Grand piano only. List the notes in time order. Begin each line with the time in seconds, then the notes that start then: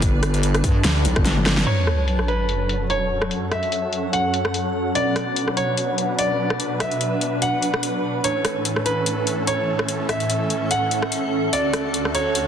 1.67 C#5
2.28 B4
2.90 C#5
3.51 E5
4.13 F#5
4.95 D5
5.57 C#5
6.19 D5
6.80 E5
7.42 F#5
8.24 C#5
8.86 B4
9.47 C#5
10.09 E5
10.71 F#5
11.53 D5
12.15 C#5